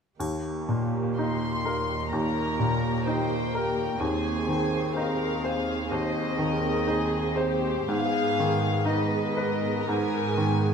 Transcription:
0.19 2.09 D#2 soft
0.19 3.99 D#2 soft
0.19 2.09 A#3 soft
0.19 2.09 G4 soft
0.19 triangle soft
0.68 1.46 A#2 soft
1.17 1.95 D#4 soft
1.17 2.10 C6 soft
1.65 2.42 A#4 soft
2.12 3.98 D#2 soft
2.12 3.05 A#3 soft
2.12 3.05 G4 soft
2.12 3.03 A#4 soft
2.12 3.07 A#5 soft
2.59 3.35 A#2 soft
3.06 3.99 A#3 soft
3.06 3.83 D#4 soft
3.06 3.99 G4 soft
3.06 3.54 C5 soft
3.06 4.01 G5 soft
3.55 4.02 A#4 soft
4.00 5.87 D#2 soft
4.00 7.87 D#2 soft
4.00 5.89 C4 soft
4.00 5.89 G#4 soft
4.00 4.49 G#4 soft
4.00 4.97 G#5 medium
4.48 5.25 D#3 soft
4.48 4.97 C5 soft
4.96 5.72 D#4 soft
4.96 5.45 A#4 soft
4.96 5.90 F5 soft
5.44 5.92 G#4 soft
5.44 6.20 C5 soft
5.90 7.87 D#2 soft
5.90 7.86 C4 soft
5.90 7.86 G#4 soft
5.90 6.39 C5 soft
5.90 7.40 D#5 soft
6.39 7.18 D#3 soft
6.39 6.88 A#4 soft
6.87 7.70 D#4 soft
6.87 7.39 G#4 soft
7.36 7.91 G4 soft
7.36 7.89 C5 soft
7.40 7.92 C5 soft
7.88 9.83 G#2 soft
7.88 10.74 G#2 soft
7.88 8.86 B3 soft
7.88 8.88 G#4 soft
7.88 8.86 G#4 soft
7.88 8.87 F5 medium
8.39 9.17 D#3 soft
8.85 9.86 B3 soft
8.85 9.67 D#4 soft
8.85 9.86 G#4 soft
8.85 9.37 B4 soft
8.85 9.81 D#5 soft
9.37 10.74 A#4 soft
9.37 10.18 B4 soft
9.82 9.89 A#5 soft
9.88 10.74 G#2 soft
9.88 10.74 B3 soft
9.88 10.74 G#4 soft
9.88 10.74 G#5 medium
10.37 10.74 D#3 soft

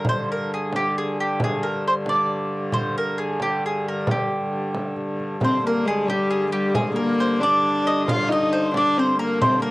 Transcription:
0.05 5.41 G2 medium
0.05 5.41 D3 medium
0.05 frame drum medium
0.09 0.28 C5 medium
0.32 0.51 A#4 medium
0.54 0.73 G#4 medium
0.73 0.97 G4 medium
0.73 frame drum medium
0.98 1.20 G#4 medium
1.20 1.40 G4 medium
1.40 1.65 G#4 medium
1.40 frame drum medium
1.63 1.83 A#4 medium
1.87 1.93 C5 medium
2.06 2.71 D5 medium
2.06 frame drum medium
2.72 2.97 C5 medium
2.72 frame drum medium
2.98 3.18 A#4 medium
3.18 3.41 G#4 medium
3.40 3.64 G4 medium
3.40 frame drum medium
3.66 3.85 G#4 medium
3.88 4.10 A#4 medium
4.07 frame drum medium
4.11 4.95 G4 medium
4.30 frame drum soft
4.75 frame drum medium
4.96 frame drum soft
5.20 frame drum soft
5.41 9.71 G2 medium
5.41 9.71 D3 medium
5.41 5.62 C4 medium
5.41 5.66 C5 medium
5.41 frame drum medium
5.66 5.87 A#3 medium
5.66 5.88 A#4 medium
5.85 6.08 G#3 medium
5.85 6.09 G#4 medium
6.06 6.51 G3 medium
6.06 6.30 G4 medium
6.06 frame drum medium
6.31 6.51 G#4 medium
6.52 6.76 G3 medium
6.52 6.75 G4 medium
6.74 6.96 G#3 medium
6.74 6.98 G#4 medium
6.74 frame drum medium
6.96 7.42 A#3 medium
6.96 7.19 A#4 medium
7.20 7.43 C5 medium
7.40 8.08 D4 medium
7.40 7.84 D5 loud
7.40 frame drum medium
7.87 8.09 D#5 medium
8.08 8.30 F4 medium
8.08 8.29 F5 loud
8.08 frame drum medium
8.29 8.74 D#4 medium
8.29 8.52 D#5 medium
8.53 8.76 C5 medium
8.74 8.99 D4 medium
8.74 8.97 D5 medium
8.74 frame drum medium
8.97 9.19 C4 medium
8.97 9.19 C5 medium
9.19 9.44 A#3 medium
9.19 9.40 A#4 medium
9.42 9.63 C4 medium
9.42 9.62 C5 medium
9.42 frame drum medium
9.62 9.71 A#3 medium
9.62 9.71 A#4 medium
9.62 frame drum soft

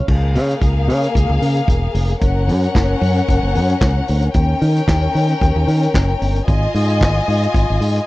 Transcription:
0.08 0.37 C#2 loud
0.08 2.18 A#3 medium
0.08 2.18 G#4 medium
0.08 2.17 F5 medium
0.08 kick medium
0.08 crash medium
0.35 0.53 C#3 medium
0.35 open hi-hat medium
0.51 closed hi-hat soft
0.62 0.89 C#2 medium
0.62 kick loud
0.62 closed hi-hat medium
0.88 1.06 C#3 medium
0.88 open hi-hat medium
1.04 closed hi-hat soft
1.15 1.25 C#2 medium
1.15 kick medium
1.15 closed hi-hat medium
1.30 1.38 C#2 medium
1.42 1.60 C#3 medium
1.42 open hi-hat medium
1.57 closed hi-hat soft
1.68 1.86 E1 medium
1.68 kick loud
1.68 closed hi-hat medium
1.94 2.13 F1 medium
1.94 open hi-hat medium
2.10 closed hi-hat soft
2.21 2.49 F#1 loud
2.21 4.30 C#4 medium
2.21 4.31 A#4 medium
2.21 4.31 F#5 medium
2.21 kick medium
2.21 closed hi-hat medium
2.48 2.66 F#2 medium
2.48 open hi-hat medium
2.64 closed hi-hat soft
2.75 2.93 F#1 medium
2.75 kick loud
2.75 snare loud
2.75 clap medium
2.75 closed hi-hat medium
3.01 3.20 F#2 medium
3.01 open hi-hat medium
3.17 closed hi-hat soft
3.29 3.39 F#1 medium
3.29 kick medium
3.29 closed hi-hat medium
3.43 3.57 F#1 medium
3.55 3.73 F#2 medium
3.55 open hi-hat medium
3.70 closed hi-hat medium
3.81 3.99 C#2 medium
3.81 kick loud
3.81 snare loud
3.81 clap medium
3.81 closed hi-hat medium
4.08 4.27 D2 medium
4.08 open hi-hat medium
4.22 closed hi-hat soft
4.34 4.53 D#2 medium
4.34 6.44 C#4 medium
4.34 6.44 A#4 medium
4.34 6.44 G5 medium
4.34 kick medium
4.34 closed hi-hat medium
4.62 4.80 D#3 medium
4.62 open hi-hat medium
4.77 closed hi-hat soft
4.88 5.06 D#2 medium
4.88 kick loud
4.88 snare loud
4.88 clap medium
4.88 closed hi-hat medium
5.15 5.33 D#3 medium
5.15 open hi-hat medium
5.30 closed hi-hat soft
5.41 5.52 D#2 loud
5.41 kick medium
5.41 closed hi-hat medium
5.56 5.64 D#2 medium
5.67 5.86 D#3 medium
5.67 open hi-hat medium
5.83 closed hi-hat medium
5.94 6.13 F#1 medium
5.94 kick loud
5.94 snare loud
5.94 clap medium
5.94 closed hi-hat medium
6.22 6.39 G1 medium
6.22 open hi-hat medium
6.36 closed hi-hat soft
6.48 6.66 G#1 loud
6.48 8.07 F4 medium
6.48 8.07 D#5 medium
6.48 8.07 G#5 medium
6.48 kick medium
6.48 closed hi-hat medium
6.75 7.03 G#2 medium
6.75 open hi-hat medium
6.90 closed hi-hat soft
7.01 7.19 G#1 medium
7.01 kick loud
7.01 snare loud
7.01 clap medium
7.01 closed hi-hat medium
7.28 7.46 G#2 medium
7.28 open hi-hat medium
7.43 closed hi-hat soft
7.54 7.64 G#1 medium
7.54 kick loud
7.54 closed hi-hat medium
7.70 7.78 G#1 medium
7.81 7.99 G#2 medium
7.81 open hi-hat medium
7.96 closed hi-hat soft

